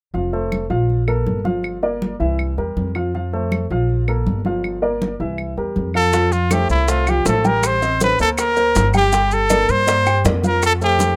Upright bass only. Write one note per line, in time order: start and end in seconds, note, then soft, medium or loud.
0.14 0.66 F1 medium
0.70 1.22 A#1 medium
1.26 2.14 G1 medium
2.20 2.55 C2 medium
2.58 2.75 E2 medium
2.77 3.64 F2 medium
3.70 4.23 A#1 medium
4.26 5.14 G1 medium
5.20 5.55 C2 medium
5.57 5.75 E2 medium
5.76 6.64 F2 medium
6.69 7.22 C2 medium
7.25 8.13 A1 medium
8.19 8.72 D2 medium
8.76 9.63 G1 medium
9.69 10.21 G2 medium
10.25 11.12 F2 medium